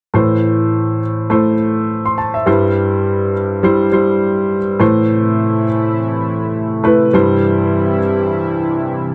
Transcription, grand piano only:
0, 0, Header, 1, 2, 480
1, 0, Start_track
1, 0, Key_signature, 0, "minor"
1, 0, Tempo, 583090
1, 117, Time_signature, 4, 2, 24, 8
1, 7530, End_track
2, 0, Start_track
2, 0, Title_t, "Grand piano"
2, 0, Program_c, 0, 0
2, 112, Note_on_c, 0, 57, 62
2, 117, Note_on_c, 0, 52, 57
2, 117, Note_on_c, 0, 64, 60
2, 118, Note_on_c, 0, 45, 58
2, 120, Note_on_c, 0, 72, 67
2, 275, Control_c, 0, 64, 127
2, 818, Note_off_c, 0, 57, 0
2, 821, Note_off_c, 0, 64, 0
2, 823, Note_off_c, 0, 72, 0
2, 1070, Note_on_c, 0, 57, 67
2, 1076, Note_on_c, 0, 64, 56
2, 1080, Note_on_c, 0, 72, 65
2, 1257, Note_off_c, 0, 57, 0
2, 1260, Note_off_c, 0, 64, 0
2, 1262, Note_off_c, 0, 72, 0
2, 1692, Note_on_c, 0, 84, 49
2, 1792, Note_off_c, 0, 84, 0
2, 1793, Note_on_c, 0, 81, 54
2, 1923, Note_off_c, 0, 81, 0
2, 1926, Note_on_c, 0, 76, 51
2, 2004, Note_off_c, 0, 52, 0
2, 2005, Note_off_c, 0, 45, 0
2, 2026, Note_on_c, 0, 55, 69
2, 2029, Note_on_c, 0, 43, 61
2, 2031, Note_on_c, 0, 64, 68
2, 2034, Note_on_c, 0, 72, 73
2, 2048, Control_c, 0, 64, 0
2, 2157, Note_off_c, 0, 76, 0
2, 2208, Control_c, 0, 64, 127
2, 2735, Note_off_c, 0, 55, 0
2, 2738, Note_off_c, 0, 64, 0
2, 2740, Note_off_c, 0, 72, 0
2, 2989, Note_on_c, 0, 55, 69
2, 2994, Note_on_c, 0, 64, 60
2, 2999, Note_on_c, 0, 72, 72
2, 3176, Note_off_c, 0, 55, 0
2, 3179, Note_off_c, 0, 64, 0
2, 3181, Note_off_c, 0, 72, 0
2, 3228, Note_on_c, 0, 55, 63
2, 3232, Note_on_c, 0, 64, 57
2, 3236, Note_on_c, 0, 72, 67
2, 3764, Note_off_c, 0, 55, 0
2, 3766, Note_off_c, 0, 64, 0
2, 3768, Note_off_c, 0, 72, 0
2, 3920, Note_off_c, 0, 43, 0
2, 3948, Note_on_c, 0, 57, 73
2, 3953, Note_on_c, 0, 45, 64
2, 3953, Note_on_c, 0, 52, 62
2, 3953, Note_on_c, 0, 64, 64
2, 3958, Note_on_c, 0, 72, 78
2, 3968, Control_c, 0, 64, 0
2, 4125, Control_c, 0, 64, 127
2, 4642, Note_off_c, 0, 45, 0
2, 4642, Note_off_c, 0, 52, 0
2, 4656, Note_off_c, 0, 57, 0
2, 4658, Note_off_c, 0, 64, 0
2, 4661, Note_off_c, 0, 72, 0
2, 5628, Note_on_c, 0, 57, 66
2, 5634, Note_on_c, 0, 64, 65
2, 5636, Note_on_c, 0, 71, 67
2, 5815, Note_off_c, 0, 57, 0
2, 5818, Note_off_c, 0, 64, 0
2, 5819, Note_off_c, 0, 71, 0
2, 5873, Note_on_c, 0, 55, 76
2, 5879, Note_on_c, 0, 43, 65
2, 5879, Note_on_c, 0, 64, 72
2, 5883, Note_on_c, 0, 72, 78
2, 5887, Control_c, 0, 64, 0
2, 6043, Control_c, 0, 64, 127
2, 6564, Note_off_c, 0, 43, 0
2, 6577, Note_off_c, 0, 55, 0
2, 6580, Note_off_c, 0, 64, 0
2, 6582, Note_off_c, 0, 72, 0
2, 7530, End_track
0, 0, End_of_file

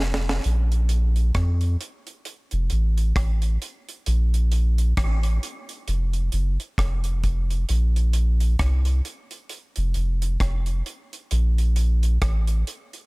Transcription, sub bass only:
0, 0, Header, 1, 2, 480
1, 0, Start_track
1, 0, Tempo, 906344
1, 232, Time_signature, 4, 2, 24, 8
1, 6918, End_track
2, 0, Start_track
2, 0, Title_t, "Sub bass"
2, 0, Program_c, 0, 38
2, 0, Note_on_c, 0, 29, 95
2, 212, Note_off_c, 0, 29, 0
2, 240, Note_on_c, 0, 34, 127
2, 696, Note_off_c, 0, 34, 0
2, 716, Note_on_c, 0, 41, 104
2, 936, Note_off_c, 0, 41, 0
2, 1338, Note_on_c, 0, 29, 117
2, 1427, Note_off_c, 0, 29, 0
2, 1439, Note_on_c, 0, 33, 96
2, 1657, Note_off_c, 0, 33, 0
2, 1674, Note_on_c, 0, 33, 87
2, 1894, Note_off_c, 0, 33, 0
2, 2157, Note_on_c, 0, 34, 117
2, 2614, Note_off_c, 0, 34, 0
2, 2634, Note_on_c, 0, 33, 103
2, 2855, Note_off_c, 0, 33, 0
2, 3115, Note_on_c, 0, 29, 95
2, 3334, Note_off_c, 0, 29, 0
2, 3352, Note_on_c, 0, 30, 105
2, 3482, Note_off_c, 0, 30, 0
2, 3592, Note_on_c, 0, 29, 104
2, 4051, Note_off_c, 0, 29, 0
2, 4076, Note_on_c, 0, 34, 119
2, 4533, Note_off_c, 0, 34, 0
2, 4553, Note_on_c, 0, 36, 98
2, 4773, Note_off_c, 0, 36, 0
2, 5176, Note_on_c, 0, 29, 120
2, 5265, Note_off_c, 0, 29, 0
2, 5274, Note_on_c, 0, 29, 99
2, 5493, Note_off_c, 0, 29, 0
2, 5511, Note_on_c, 0, 29, 100
2, 5732, Note_off_c, 0, 29, 0
2, 5994, Note_on_c, 0, 34, 127
2, 6451, Note_off_c, 0, 34, 0
2, 6472, Note_on_c, 0, 33, 115
2, 6692, Note_off_c, 0, 33, 0
2, 6918, End_track
0, 0, End_of_file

